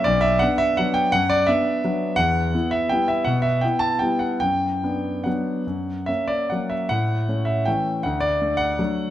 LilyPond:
<<
  \new Staff \with { instrumentName = "Grand piano" } { \time 3/4 \key b \minor \tempo 4 = 162 d''8 e''8 fis''8 e''8 fis''8 g''8 | fis''8 d''8 e''2 | fis''4. e''8 g''8 e''8 | fis''8 e''8 g''8 a''8 g''8 fis''8 |
g''2 fis''4~ | fis''4 e''8 d''8 fis''8 e''8 | fis''4. e''8 g''4 | fis''8 d''4 fis''4. | }
  \new Staff \with { instrumentName = "Grand piano" } { \time 3/4 \key b \minor b,,4 <b d'>4 <fis b d'>4 | fis,4 <b d'>4 <fis b d'>4 | e,4 <b e'>4 <g b e'>4 | b,4 <b e'>4 <g b e'>4 |
fis,4 <b d'>4 <fis b d'>4 | fis,4 <ais cis'>4 <fis ais cis'>4 | a,4 <a cis'>4 <e a cis'>4 | d,4 <a d'>4 <fis a d'>4 | }
>>